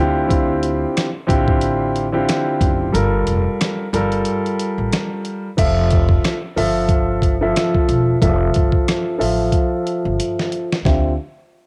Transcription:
0.00 0.84 D2 loud
0.00 0.26 D3 medium
0.00 0.26 C4 medium
0.00 0.26 E4 medium
0.00 0.27 F4 medium
0.00 0.27 G4 loud
0.27 1.06 D3 medium
0.27 1.06 C4 medium
0.27 1.06 E4 medium
0.27 1.07 F4 medium
0.27 1.07 G4 loud
0.27 kick loud
0.27 closed hi-hat medium
0.63 closed hi-hat medium
0.97 cross-stick medium
0.97 snare loud
0.97 closed hi-hat medium
1.27 2.24 A1 medium
1.27 2.05 D3 loud
1.27 2.05 C4 medium
1.27 2.06 E4 medium
1.27 2.06 F4 medium
1.27 2.06 G4 loud
1.27 kick loud
1.27 closed hi-hat medium
1.48 kick loud
1.61 closed hi-hat medium
1.96 closed hi-hat medium
2.12 2.88 D3 medium
2.12 2.88 C4 medium
2.12 2.88 E4 medium
2.12 2.88 F4 medium
2.12 2.88 G4 loud
2.29 cross-stick medium
2.29 snare loud
2.29 closed hi-hat medium
2.61 2.90 F#1 loud
2.61 kick medium
2.61 closed hi-hat medium
2.92 3.23 G1 loud
2.92 3.85 G3 medium
2.92 3.86 F4 medium
2.92 3.86 A4 medium
2.92 3.86 A#4 loud
2.92 closed hi-hat medium
3.27 3.44 F1 medium
3.27 closed hi-hat medium
3.61 cross-stick medium
3.61 snare loud
3.61 closed hi-hat medium
3.93 4.22 G1 medium
3.93 5.47 G3 loud
3.93 5.47 F4 medium
3.93 5.47 A4 medium
3.93 5.48 A#4 loud
3.93 closed hi-hat medium
4.12 closed hi-hat medium
4.25 closed hi-hat medium
4.46 closed hi-hat medium
4.59 closed hi-hat medium
4.78 4.90 A1 medium
4.92 cross-stick medium
4.92 snare loud
4.92 closed hi-hat medium
5.25 closed hi-hat medium
5.57 6.15 F1 loud
5.57 6.35 F3 medium
5.57 6.35 F4 medium
5.57 6.35 A4 medium
5.57 6.36 E5 loud
5.57 kick loud
5.57 closed hi-hat medium
5.57 crash medium
5.90 kick loud
5.90 closed hi-hat medium
6.09 kick medium
6.24 cross-stick medium
6.24 snare loud
6.24 closed hi-hat medium
6.56 7.52 G1 medium
6.56 7.34 F3 loud
6.56 7.34 F4 medium
6.56 7.34 A4 medium
6.56 7.35 E5 loud
6.56 open hi-hat medium
6.89 kick loud
6.89 closed hi-hat medium
7.22 kick medium
7.22 closed hi-hat medium
7.41 8.16 F3 loud
7.41 8.16 F4 medium
7.41 8.16 A4 medium
7.41 8.16 E5 loud
7.56 cross-stick medium
7.56 snare loud
7.56 closed hi-hat medium
7.75 kick medium
7.89 8.17 E1 loud
7.89 closed hi-hat medium
8.21 8.50 F1 loud
8.21 9.14 F3 medium
8.21 9.14 F4 medium
8.21 9.14 A4 medium
8.21 9.14 E5 loud
8.21 kick loud
8.21 closed hi-hat medium
8.54 8.72 G1 medium
8.54 kick loud
8.54 closed hi-hat medium
8.72 kick loud
8.88 cross-stick medium
8.88 snare loud
8.88 closed hi-hat medium
9.18 9.49 A1 medium
9.18 10.73 F3 loud
9.18 10.73 F4 loud
9.18 10.74 A4 medium
9.18 10.74 E5 loud
9.18 open hi-hat medium
9.52 kick medium
9.52 closed hi-hat medium
9.87 closed hi-hat medium
10.05 10.18 G1 medium
10.20 closed hi-hat medium
10.40 snare medium
10.52 closed hi-hat medium
10.73 snare loud
10.85 11.16 D2 loud
10.85 11.11 D3 medium
10.85 11.11 C4 medium
10.85 11.11 F4 medium
10.85 11.11 G4 medium
10.85 11.11 E5 medium
10.85 kick loud
10.85 snare medium

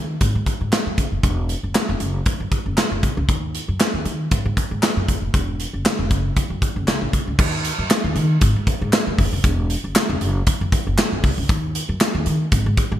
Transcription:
0.00 0.14 D#3 medium
0.21 0.32 G#1 medium
0.21 kick medium
0.21 closed hi-hat medium
0.35 0.44 G#2 medium
0.46 kick medium
0.46 closed hi-hat medium
0.61 0.69 G#2 medium
0.72 snare medium
0.72 clap medium
0.72 closed hi-hat medium
0.86 0.95 F#2 medium
0.98 1.08 F#1 medium
0.98 kick medium
0.98 closed hi-hat medium
1.12 1.20 F1 medium
1.23 1.53 E1 medium
1.23 kick medium
1.23 closed hi-hat medium
1.49 closed hi-hat medium
1.63 1.72 F#1 medium
1.75 snare loud
1.75 clap medium
1.75 closed hi-hat medium
1.89 1.97 E1 loud
2.00 2.19 F#1 medium
2.00 closed hi-hat medium
2.26 kick loud
2.26 closed hi-hat medium
2.40 2.49 F#2 medium
2.52 kick medium
2.52 closed hi-hat medium
2.66 2.74 F#1 medium
2.77 snare medium
2.77 clap medium
2.77 closed hi-hat medium
2.92 3.00 F#1 medium
3.03 3.14 C2 medium
3.03 kick medium
3.03 closed hi-hat medium
3.17 3.26 C#2 medium
3.29 3.58 D#2 medium
3.29 kick loud
3.29 closed hi-hat medium
3.55 closed hi-hat medium
3.68 3.77 F#2 medium
3.80 snare loud
3.80 clap medium
3.80 closed hi-hat medium
3.94 4.02 D#2 medium
4.05 4.24 D#3 loud
4.05 closed hi-hat medium
4.31 4.42 G#1 medium
4.31 kick medium
4.31 closed hi-hat medium
4.45 4.54 G#2 loud
4.57 kick medium
4.57 closed hi-hat medium
4.71 4.80 G#2 medium
4.83 snare medium
4.83 clap medium
4.83 closed hi-hat medium
4.97 5.05 F#2 medium
5.08 5.19 F#1 medium
5.08 kick medium
5.08 closed hi-hat medium
5.22 5.31 F1 medium
5.34 5.64 E1 medium
5.34 kick loud
5.34 closed hi-hat medium
5.60 closed hi-hat medium
5.73 5.82 F#1 medium
5.85 snare loud
5.85 clap medium
5.85 closed hi-hat medium
5.99 6.11 E1 medium
6.11 6.30 F#1 medium
6.11 kick loud
6.11 closed hi-hat medium
6.36 muted upright bass stroke soft
6.36 kick loud
6.36 closed hi-hat medium
6.50 6.59 F#2 medium
6.62 kick loud
6.62 closed hi-hat medium
6.76 6.84 F#1 medium
6.87 6.98 C#2 medium
6.87 snare medium
6.87 clap medium
6.87 closed hi-hat medium
7.02 7.10 A#1 medium
7.13 7.24 C2 medium
7.13 kick medium
7.13 closed hi-hat medium
7.27 7.36 C#2 medium
7.39 7.69 D#2 medium
7.39 kick loud
7.39 crash loud
7.65 closed hi-hat medium
7.79 7.87 F#2 medium
7.90 snare loud
7.90 clap loud
7.90 closed hi-hat medium
8.04 8.13 D#2 loud
8.16 8.35 D#3 loud
8.16 closed hi-hat medium
8.41 8.52 G#1 loud
8.41 kick loud
8.41 closed hi-hat medium
8.56 8.64 G#2 loud
8.67 kick medium
8.67 closed hi-hat medium
8.81 8.90 G#2 loud
8.93 snare loud
8.93 clap medium
8.93 closed hi-hat medium
9.07 9.15 F#2 medium
9.18 9.29 F#1 loud
9.18 kick medium
9.18 open hi-hat medium
9.33 9.41 F1 medium
9.44 9.74 E1 loud
9.44 kick loud
9.44 closed hi-hat medium
9.70 closed hi-hat medium
9.84 9.92 F#1 medium
9.95 snare loud
9.95 clap loud
9.95 closed hi-hat medium
10.09 10.18 E1 loud
10.21 10.40 F#1 medium
10.21 closed hi-hat medium
10.47 kick loud
10.47 closed hi-hat medium
10.61 10.69 F#2 loud
10.72 kick loud
10.72 closed hi-hat medium
10.87 10.95 F#1 medium
10.98 snare loud
10.98 clap medium
10.98 closed hi-hat medium
11.12 11.21 F#1 medium
11.24 11.34 C2 medium
11.24 kick loud
11.24 open hi-hat medium
11.38 11.46 C#2 medium
11.49 11.79 D#2 loud
11.49 kick loud
11.49 closed hi-hat medium
11.75 closed hi-hat medium
11.89 11.97 F#2 medium
12.00 snare loud
12.00 clap loud
12.00 closed hi-hat medium
12.15 12.23 D#2 loud
12.26 12.45 D#3 loud
12.26 closed hi-hat medium
12.52 12.62 G#1 loud
12.52 kick loud
12.52 closed hi-hat medium
12.66 12.74 G#2 loud
12.77 kick loud
12.77 closed hi-hat medium
12.92 12.99 G#2 loud

